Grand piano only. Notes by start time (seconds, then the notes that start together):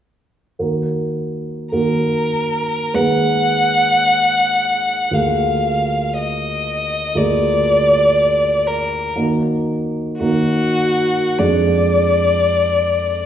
0.59 D#2 A#3 F#4 A#4
1.72 D#2 A#3 F#4 A#4
2.94 D#2 G#3 G#4 B4
5.11 D2 A#3 F4 G#4
7.15 D2 A#3 F4 G#4
9.16 D#2 A#3 D#4 F#4
10.20 D#2 A#3 D#4 F#4
11.39 F2 G#3 D4 G#4